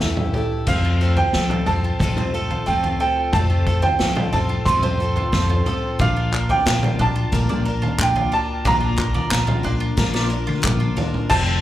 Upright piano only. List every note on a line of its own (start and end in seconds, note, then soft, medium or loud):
0.68 1.15 F5 medium
1.17 1.69 G5 medium
1.67 2.63 A5 medium
2.66 2.99 G5 medium
3.00 3.35 G5 medium
3.33 3.85 A5 medium
3.83 4.35 G5 medium
4.33 4.68 A5 medium
4.65 5.62 C6 medium
6.01 6.52 F5 medium
6.51 7.02 G5 medium
7.01 7.96 A5 medium
8.02 8.35 G5 medium
8.33 8.67 A5 medium
8.67 10.61 A#5 loud
11.30 11.61 A5 loud